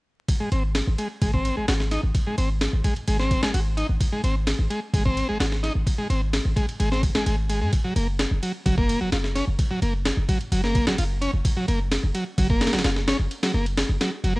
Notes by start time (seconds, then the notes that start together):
0.29 kick, ride
0.40 G#3
0.52 G#1 C4, ride
0.75 snare, ride
0.87 G#1
0.98 G#3, ride
1.22 G#1 G#3, kick, ride
1.33 C4, kick
1.45 ride
1.57 G#1 G#3
1.68 G#1 F#4, snare, ride
1.80 snare
1.91 D#4, snare, ride
2.03 G#1
2.15 kick, ride
2.27 G#3
2.38 G#1 C4, ride
2.61 snare, ride
2.73 G#1
2.84 G#3, kick, ride
2.96 ride
3.07 G#1 G#3, ride
3.19 C4, snare
3.31 kick, ride
3.43 G#1 G#3, snare
3.54 G#1 F#4, ride
3.77 D#4, ride
3.89 G#1
4.01 kick, ride
4.12 G#3
4.24 G#1 C4, ride
4.47 snare, ride
4.59 G#1
4.70 G#3, ride
4.94 G#1 G#3, kick, ride
5.05 C4, kick
5.17 ride
5.29 G#1 G#3
5.40 G#1 F#4, snare, ride
5.52 snare
5.63 D#4, snare, ride
5.75 G#1
5.87 kick, ride
5.98 G#3
6.10 G#1 C4, ride
6.33 snare, ride
6.45 G#1
6.56 G#3, kick, ride
6.69 ride
6.80 G#1 G#3, ride
6.92 C4, snare
7.03 kick, ride
7.15 G#1 G#3, snare
7.26 G#1 G#3, ride
7.49 G#3, ride
7.61 G#2 G#3
7.73 kick, ride
7.84 F#3
7.96 F#1 A#3, ride
8.19 snare, ride
8.31 F#1
8.43 F#3, ride
8.66 F#1 F#3, kick, ride
8.78 A#3, kick
8.89 ride
9.01 F#1 F#3
9.12 F#1 F4, snare, ride
9.24 snare
9.35 C#4, snare, ride
9.48 F#1
9.59 kick, ride
9.71 F#3
9.82 F#1 A#3, ride
10.05 snare, ride
10.17 F#1
10.29 F#3, kick, ride
10.41 ride
10.52 F#1 F#3, ride
10.64 A#3, snare
10.75 kick, ride
10.87 F#1 F#3, snare
10.98 F#1 F4, ride
11.21 C#4, ride
11.34 F#1
11.45 kick, ride
11.57 F#3
11.68 F#1 A#3, ride
11.92 snare, ride
12.04 F#1
12.15 F#3, ride
12.38 F#1 F#3, kick, ride
12.50 A#3, kick
12.61 snare, ride
12.67 snare, ride
12.73 F#1 F#3, snare, ride
12.79 snare, ride
12.84 F#1 F4, snare, ride
12.96 snare
13.08 C#4, snare, ride
13.19 F#1
13.31 ride
13.43 F#3, snare, ride
13.54 F#1 A#3
13.66 ride
13.77 snare, ride
13.89 F#1
14.01 F#3, snare, ride
14.24 F#1 F#3, ride
14.36 A#3